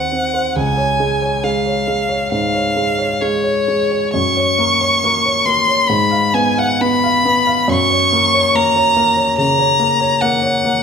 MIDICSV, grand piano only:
0, 0, Header, 1, 2, 480
1, 0, Start_track
1, 0, Tempo, 884956
1, 303, Time_signature, 4, 2, 24, 8
1, 1742, Tempo, 927357
1, 2222, Tempo, 870827
1, 3182, Tempo, 934579
1, 3662, Tempo, 881057
1, 4142, Tempo, 836820
1, 5939, End_track
2, 0, Start_track
2, 0, Title_t, "Grand piano"
2, 0, Program_c, 0, 0
2, 0, Control_c, 0, 64, 127
2, 0, Note_on_c, 0, 39, 43
2, 0, Note_on_c, 0, 60, 36
2, 0, Note_on_c, 0, 72, 38
2, 66, Note_off_c, 0, 60, 0
2, 66, Note_on_c, 0, 60, 37
2, 138, Note_off_c, 0, 72, 0
2, 184, Note_on_c, 0, 72, 36
2, 257, Note_off_c, 0, 60, 0
2, 281, Note_off_c, 0, 39, 0
2, 303, Note_off_c, 0, 72, 0
2, 304, Note_on_c, 0, 37, 46
2, 311, Control_c, 0, 64, 0
2, 393, Control_c, 0, 64, 127
2, 419, Note_on_c, 0, 73, 41
2, 542, Note_on_c, 0, 56, 38
2, 614, Note_off_c, 0, 73, 0
2, 662, Note_on_c, 0, 73, 40
2, 735, Note_off_c, 0, 56, 0
2, 780, Note_on_c, 0, 56, 39
2, 855, Note_off_c, 0, 73, 0
2, 901, Note_on_c, 0, 73, 38
2, 973, Note_off_c, 0, 56, 0
2, 1017, Note_on_c, 0, 56, 40
2, 1092, Note_off_c, 0, 73, 0
2, 1134, Note_on_c, 0, 73, 39
2, 1210, Note_off_c, 0, 56, 0
2, 1239, Note_off_c, 0, 37, 0
2, 1257, Note_on_c, 0, 44, 37
2, 1329, Note_off_c, 0, 73, 0
2, 1378, Note_on_c, 0, 73, 39
2, 1451, Note_off_c, 0, 44, 0
2, 1499, Note_on_c, 0, 56, 39
2, 1572, Note_off_c, 0, 73, 0
2, 1619, Note_on_c, 0, 73, 39
2, 1693, Note_off_c, 0, 56, 0
2, 1746, Note_on_c, 0, 56, 41
2, 1812, Note_off_c, 0, 73, 0
2, 1859, Note_on_c, 0, 73, 42
2, 1935, Note_off_c, 0, 56, 0
2, 1984, Note_on_c, 0, 56, 42
2, 2055, Note_off_c, 0, 73, 0
2, 2104, Note_on_c, 0, 73, 41
2, 2176, Note_off_c, 0, 56, 0
2, 2222, Note_off_c, 0, 73, 0
2, 2222, Note_on_c, 0, 42, 50
2, 2232, Control_c, 0, 64, 0
2, 2321, Control_c, 0, 64, 127
2, 2349, Note_on_c, 0, 73, 42
2, 2467, Note_on_c, 0, 58, 43
2, 2540, Note_off_c, 0, 73, 0
2, 2593, Note_on_c, 0, 73, 42
2, 2659, Note_off_c, 0, 58, 0
2, 2717, Note_on_c, 0, 58, 48
2, 2781, Note_off_c, 0, 73, 0
2, 2838, Note_on_c, 0, 73, 43
2, 2902, Note_off_c, 0, 58, 0
2, 2949, Note_on_c, 0, 58, 45
2, 3021, Note_off_c, 0, 73, 0
2, 3072, Note_on_c, 0, 73, 44
2, 3137, Note_off_c, 0, 58, 0
2, 3160, Note_off_c, 0, 42, 0
2, 3187, Note_off_c, 0, 73, 0
2, 3189, Note_on_c, 0, 44, 49
2, 3192, Control_c, 0, 64, 0
2, 3271, Control_c, 0, 64, 127
2, 3300, Note_on_c, 0, 77, 45
2, 3419, Note_on_c, 0, 59, 45
2, 3494, Note_off_c, 0, 77, 0
2, 3539, Note_on_c, 0, 77, 44
2, 3614, Note_off_c, 0, 59, 0
2, 3661, Note_on_c, 0, 59, 44
2, 3735, Note_off_c, 0, 77, 0
2, 3783, Note_on_c, 0, 77, 46
2, 3858, Note_off_c, 0, 59, 0
2, 3901, Note_on_c, 0, 59, 46
2, 3976, Note_off_c, 0, 77, 0
2, 4017, Note_on_c, 0, 77, 43
2, 4092, Note_off_c, 0, 59, 0
2, 4123, Note_off_c, 0, 44, 0
2, 4133, Note_on_c, 0, 42, 57
2, 4138, Note_off_c, 0, 77, 0
2, 4151, Control_c, 0, 64, 0
2, 4262, Control_c, 0, 64, 127
2, 4263, Note_on_c, 0, 73, 52
2, 4388, Note_on_c, 0, 58, 45
2, 4459, Note_off_c, 0, 73, 0
2, 4512, Note_on_c, 0, 73, 49
2, 4581, Note_off_c, 0, 58, 0
2, 4633, Note_on_c, 0, 58, 51
2, 4702, Note_off_c, 0, 73, 0
2, 4752, Note_on_c, 0, 73, 46
2, 4821, Note_off_c, 0, 58, 0
2, 4870, Note_on_c, 0, 58, 50
2, 4939, Note_off_c, 0, 73, 0
2, 4988, Note_on_c, 0, 73, 47
2, 5056, Note_off_c, 0, 58, 0
2, 5074, Note_off_c, 0, 42, 0
2, 5107, Note_on_c, 0, 49, 47
2, 5175, Note_off_c, 0, 73, 0
2, 5229, Note_on_c, 0, 73, 50
2, 5295, Note_off_c, 0, 49, 0
2, 5346, Note_on_c, 0, 58, 47
2, 5417, Note_off_c, 0, 73, 0
2, 5467, Note_on_c, 0, 73, 49
2, 5535, Note_off_c, 0, 58, 0
2, 5590, Note_on_c, 0, 58, 49
2, 5656, Note_off_c, 0, 73, 0
2, 5711, Note_on_c, 0, 73, 50
2, 5778, Note_off_c, 0, 58, 0
2, 5833, Note_on_c, 0, 58, 50
2, 5899, Note_off_c, 0, 73, 0
2, 5939, Note_off_c, 0, 58, 0
2, 5939, End_track
0, 0, End_of_file